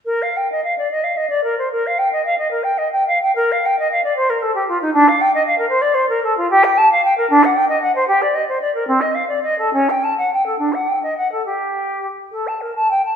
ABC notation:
X:1
M:6/8
L:1/16
Q:3/8=74
K:Bb
V:1 name="Flute"
B f g e f d e f e d B c | B f g e f e B g e g f g | B f g e f d c B A G F E | D f g e f B c d c B A F |
[K:Gm] G g a f g B D ^f g e f c | G d e c d B C e f d e A | ^C g a ^f g A D f g e f A | G6 A a B a g a |]